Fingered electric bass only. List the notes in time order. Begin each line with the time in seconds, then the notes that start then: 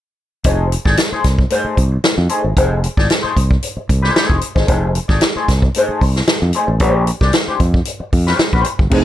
0.45 F1
0.86 G#1
1.12 muted fingered electric bass stroke
1.24 C2
1.64 muted fingered electric bass stroke
1.77 C2
2.18 F2
2.44 G#1
2.57 F1
2.98 G#1
3.24 muted fingered electric bass stroke
3.37 C2
3.77 muted fingered electric bass stroke
3.90 C2
4.30 F1
4.56 G#1
4.69 F1
5.09 G#1
5.36 muted fingered electric bass stroke
5.49 C2
5.89 muted fingered electric bass stroke
6.01 C2
6.42 F2
6.68 A1
6.80 A#1
7.21 C2
7.48 muted fingered electric bass stroke
7.60 F2
8.00 muted fingered electric bass stroke
8.13 F2
8.39 muted fingered electric bass stroke
8.53 A#1
8.79 G1
8.92 F1